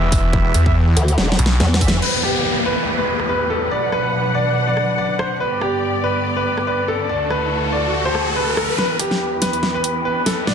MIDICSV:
0, 0, Header, 1, 9, 480
1, 0, Start_track
1, 0, Key_signature, 1, "minor"
1, 0, Tempo, 422535
1, 378, Time_signature, 4, 2, 24, 8
1, 11978, End_track
2, 0, Start_track
2, 0, Title_t, "Brass ensemble"
2, 0, Program_c, 0, 61
2, 0, Note_on_c, 0, 64, 86
2, 0, Note_on_c, 0, 71, 81
2, 0, Note_on_c, 0, 76, 95
2, 718, Note_off_c, 0, 64, 0
2, 718, Note_off_c, 0, 71, 0
2, 718, Note_off_c, 0, 76, 0
2, 750, Note_on_c, 0, 64, 93
2, 750, Note_on_c, 0, 71, 79
2, 750, Note_on_c, 0, 76, 105
2, 854, Note_off_c, 0, 64, 0
2, 854, Note_off_c, 0, 71, 0
2, 854, Note_off_c, 0, 76, 0
2, 2058, Note_on_c, 0, 64, 77
2, 2058, Note_on_c, 0, 71, 70
2, 2058, Note_on_c, 0, 76, 86
2, 2249, Note_off_c, 0, 64, 0
2, 2249, Note_off_c, 0, 71, 0
2, 2249, Note_off_c, 0, 76, 0
2, 11978, End_track
3, 0, Start_track
3, 0, Title_t, "Grand piano"
3, 0, Program_c, 1, 0
3, 2298, Note_on_c, 1, 71, 84
3, 2488, Note_off_c, 1, 71, 0
3, 2538, Note_on_c, 1, 67, 87
3, 2917, Note_off_c, 1, 67, 0
3, 3018, Note_on_c, 1, 71, 88
3, 3298, Note_off_c, 1, 71, 0
3, 3389, Note_on_c, 1, 71, 85
3, 3662, Note_off_c, 1, 71, 0
3, 3738, Note_on_c, 1, 71, 83
3, 3928, Note_off_c, 1, 71, 0
3, 3978, Note_on_c, 1, 69, 86
3, 4168, Note_off_c, 1, 69, 0
3, 4218, Note_on_c, 1, 74, 89
3, 4408, Note_off_c, 1, 74, 0
3, 4458, Note_on_c, 1, 71, 87
3, 4837, Note_off_c, 1, 71, 0
3, 4938, Note_on_c, 1, 74, 88
3, 5218, Note_off_c, 1, 74, 0
3, 5309, Note_on_c, 1, 74, 88
3, 5582, Note_off_c, 1, 74, 0
3, 5658, Note_on_c, 1, 74, 89
3, 5848, Note_off_c, 1, 74, 0
3, 5897, Note_on_c, 1, 72, 85
3, 6087, Note_off_c, 1, 72, 0
3, 6138, Note_on_c, 1, 71, 92
3, 6328, Note_off_c, 1, 71, 0
3, 6378, Note_on_c, 1, 67, 88
3, 6757, Note_off_c, 1, 67, 0
3, 6858, Note_on_c, 1, 71, 90
3, 7138, Note_off_c, 1, 71, 0
3, 7230, Note_on_c, 1, 71, 87
3, 7503, Note_off_c, 1, 71, 0
3, 7578, Note_on_c, 1, 71, 84
3, 7768, Note_off_c, 1, 71, 0
3, 7818, Note_on_c, 1, 69, 88
3, 8008, Note_off_c, 1, 69, 0
3, 8058, Note_on_c, 1, 74, 91
3, 8248, Note_off_c, 1, 74, 0
3, 8298, Note_on_c, 1, 71, 86
3, 8677, Note_off_c, 1, 71, 0
3, 8777, Note_on_c, 1, 74, 89
3, 9058, Note_off_c, 1, 74, 0
3, 9149, Note_on_c, 1, 72, 89
3, 9422, Note_off_c, 1, 72, 0
3, 9497, Note_on_c, 1, 71, 86
3, 9687, Note_off_c, 1, 71, 0
3, 9737, Note_on_c, 1, 69, 90
3, 9927, Note_off_c, 1, 69, 0
3, 9977, Note_on_c, 1, 71, 94
3, 10167, Note_off_c, 1, 71, 0
3, 10218, Note_on_c, 1, 67, 88
3, 10597, Note_off_c, 1, 67, 0
3, 10697, Note_on_c, 1, 71, 96
3, 10978, Note_off_c, 1, 71, 0
3, 11070, Note_on_c, 1, 71, 89
3, 11343, Note_off_c, 1, 71, 0
3, 11418, Note_on_c, 1, 71, 85
3, 11608, Note_off_c, 1, 71, 0
3, 11658, Note_on_c, 1, 69, 88
3, 11848, Note_off_c, 1, 69, 0
3, 11898, Note_on_c, 1, 74, 95
3, 11978, Note_off_c, 1, 74, 0
3, 11978, End_track
4, 0, Start_track
4, 0, Title_t, "String section"
4, 0, Program_c, 2, 48
4, 0, Note_on_c, 2, 52, 80
4, 0, Note_on_c, 2, 59, 79
4, 0, Note_on_c, 2, 67, 95
4, 2253, Note_off_c, 2, 52, 0
4, 2253, Note_off_c, 2, 59, 0
4, 2279, Note_off_c, 2, 67, 0
4, 2297, Note_on_c, 2, 40, 74
4, 2297, Note_on_c, 2, 52, 66
4, 2297, Note_on_c, 2, 59, 68
4, 2297, Note_on_c, 2, 67, 69
4, 2297, Note_on_c, 2, 71, 84
4, 4198, Note_off_c, 2, 40, 0
4, 4198, Note_off_c, 2, 52, 0
4, 4198, Note_off_c, 2, 59, 0
4, 4198, Note_off_c, 2, 67, 0
4, 4218, Note_on_c, 2, 47, 74
4, 4218, Note_on_c, 2, 54, 67
4, 4218, Note_on_c, 2, 62, 73
4, 4218, Note_on_c, 2, 78, 82
4, 6099, Note_off_c, 2, 71, 0
4, 6119, Note_off_c, 2, 47, 0
4, 6119, Note_off_c, 2, 54, 0
4, 6119, Note_off_c, 2, 62, 0
4, 6119, Note_off_c, 2, 78, 0
4, 6137, Note_on_c, 2, 43, 77
4, 6137, Note_on_c, 2, 50, 71
4, 6137, Note_on_c, 2, 59, 72
4, 6137, Note_on_c, 2, 67, 73
4, 6137, Note_on_c, 2, 74, 86
4, 8038, Note_off_c, 2, 43, 0
4, 8038, Note_off_c, 2, 59, 0
4, 8038, Note_off_c, 2, 74, 0
4, 8039, Note_off_c, 2, 67, 0
4, 8057, Note_on_c, 2, 38, 78
4, 8057, Note_on_c, 2, 57, 72
4, 8057, Note_on_c, 2, 66, 75
4, 8057, Note_on_c, 2, 69, 87
4, 9939, Note_off_c, 2, 50, 0
4, 9958, Note_off_c, 2, 38, 0
4, 9958, Note_off_c, 2, 57, 0
4, 9958, Note_off_c, 2, 66, 0
4, 9958, Note_off_c, 2, 69, 0
4, 9978, Note_on_c, 2, 40, 75
4, 9978, Note_on_c, 2, 52, 73
4, 9978, Note_on_c, 2, 59, 70
4, 9978, Note_on_c, 2, 67, 70
4, 9978, Note_on_c, 2, 71, 88
4, 11879, Note_off_c, 2, 40, 0
4, 11879, Note_off_c, 2, 52, 0
4, 11879, Note_off_c, 2, 59, 0
4, 11879, Note_off_c, 2, 67, 0
4, 11898, Note_on_c, 2, 47, 79
4, 11898, Note_on_c, 2, 54, 72
4, 11898, Note_on_c, 2, 62, 73
4, 11898, Note_on_c, 2, 78, 88
4, 11978, Note_off_c, 2, 47, 0
4, 11978, Note_off_c, 2, 54, 0
4, 11978, Note_off_c, 2, 62, 0
4, 11978, Note_off_c, 2, 71, 0
4, 11978, Note_off_c, 2, 78, 0
4, 11978, End_track
5, 0, Start_track
5, 0, Title_t, "Wobble bass"
5, 0, Program_c, 3, 39
5, 1098, Note_on_c, 3, 38, 99
5, 1321, Note_off_c, 3, 38, 0
5, 1338, Note_on_c, 3, 28, 99
5, 1561, Note_off_c, 3, 28, 0
5, 1818, Note_on_c, 3, 40, 91
5, 2281, Note_off_c, 3, 40, 0
5, 11978, End_track
6, 0, Start_track
6, 0, Title_t, "Detuned saw bass"
6, 0, Program_c, 4, 39
6, 0, Note_on_c, 4, 28, 102
6, 601, Note_off_c, 4, 28, 0
6, 618, Note_on_c, 4, 40, 101
6, 1081, Note_off_c, 4, 40, 0
6, 1578, Note_on_c, 4, 35, 98
6, 1801, Note_off_c, 4, 35, 0
6, 11978, End_track
7, 0, Start_track
7, 0, Title_t, "Downlifter"
7, 0, Program_c, 5, 103
7, 2298, Note_on_c, 5, 60, 66
7, 6138, Note_off_c, 5, 60, 0
7, 11978, End_track
8, 0, Start_track
8, 0, Title_t, "Riser"
8, 0, Program_c, 6, 103
8, 6138, Note_on_c, 6, 60, 73
8, 9978, Note_off_c, 6, 60, 0
8, 9978, Note_on_c, 6, 60, 77
8, 11978, Note_off_c, 6, 60, 0
8, 11978, End_track
9, 0, Start_track
9, 0, Title_t, "Drums"
9, 138, Note_on_c, 9, 36, 105
9, 138, Note_on_c, 9, 46, 101
9, 251, Note_off_c, 9, 46, 0
9, 252, Note_off_c, 9, 36, 0
9, 378, Note_on_c, 9, 36, 118
9, 492, Note_off_c, 9, 36, 0
9, 618, Note_on_c, 9, 37, 52
9, 618, Note_on_c, 9, 42, 79
9, 731, Note_off_c, 9, 37, 0
9, 731, Note_off_c, 9, 42, 0
9, 750, Note_on_c, 9, 36, 65
9, 864, Note_off_c, 9, 36, 0
9, 1098, Note_on_c, 9, 42, 90
9, 1212, Note_off_c, 9, 42, 0
9, 1230, Note_on_c, 9, 42, 41
9, 1338, Note_on_c, 9, 38, 75
9, 1343, Note_off_c, 9, 42, 0
9, 1452, Note_off_c, 9, 38, 0
9, 1497, Note_on_c, 9, 38, 74
9, 1578, Note_on_c, 9, 42, 87
9, 1611, Note_off_c, 9, 38, 0
9, 1658, Note_on_c, 9, 38, 89
9, 1691, Note_off_c, 9, 42, 0
9, 1771, Note_off_c, 9, 38, 0
9, 1818, Note_on_c, 9, 38, 92
9, 1931, Note_off_c, 9, 38, 0
9, 1978, Note_on_c, 9, 38, 99
9, 2058, Note_on_c, 9, 36, 62
9, 2058, Note_on_c, 9, 46, 92
9, 2091, Note_off_c, 9, 38, 0
9, 2138, Note_on_c, 9, 38, 108
9, 2172, Note_off_c, 9, 36, 0
9, 2172, Note_off_c, 9, 46, 0
9, 2252, Note_off_c, 9, 38, 0
9, 2298, Note_on_c, 9, 49, 77
9, 2412, Note_off_c, 9, 49, 0
9, 2538, Note_on_c, 9, 37, 45
9, 2652, Note_off_c, 9, 37, 0
9, 3630, Note_on_c, 9, 37, 45
9, 3743, Note_off_c, 9, 37, 0
9, 4458, Note_on_c, 9, 37, 43
9, 4571, Note_off_c, 9, 37, 0
9, 5418, Note_on_c, 9, 37, 47
9, 5532, Note_off_c, 9, 37, 0
9, 5898, Note_on_c, 9, 37, 69
9, 6012, Note_off_c, 9, 37, 0
9, 6378, Note_on_c, 9, 37, 46
9, 6492, Note_off_c, 9, 37, 0
9, 7470, Note_on_c, 9, 37, 46
9, 7583, Note_off_c, 9, 37, 0
9, 8298, Note_on_c, 9, 37, 47
9, 8412, Note_off_c, 9, 37, 0
9, 9258, Note_on_c, 9, 37, 51
9, 9372, Note_off_c, 9, 37, 0
9, 9738, Note_on_c, 9, 37, 79
9, 9852, Note_off_c, 9, 37, 0
9, 9978, Note_on_c, 9, 38, 45
9, 10092, Note_off_c, 9, 38, 0
9, 10218, Note_on_c, 9, 37, 44
9, 10218, Note_on_c, 9, 42, 78
9, 10332, Note_off_c, 9, 37, 0
9, 10332, Note_off_c, 9, 42, 0
9, 10350, Note_on_c, 9, 38, 42
9, 10463, Note_off_c, 9, 38, 0
9, 10698, Note_on_c, 9, 38, 51
9, 10698, Note_on_c, 9, 42, 83
9, 10812, Note_off_c, 9, 38, 0
9, 10812, Note_off_c, 9, 42, 0
9, 10830, Note_on_c, 9, 42, 39
9, 10938, Note_on_c, 9, 38, 53
9, 10943, Note_off_c, 9, 42, 0
9, 11051, Note_off_c, 9, 38, 0
9, 11178, Note_on_c, 9, 42, 78
9, 11292, Note_off_c, 9, 42, 0
9, 11658, Note_on_c, 9, 38, 55
9, 11658, Note_on_c, 9, 46, 90
9, 11771, Note_off_c, 9, 38, 0
9, 11771, Note_off_c, 9, 46, 0
9, 11898, Note_on_c, 9, 38, 59
9, 11978, Note_off_c, 9, 38, 0
9, 11978, End_track
0, 0, End_of_file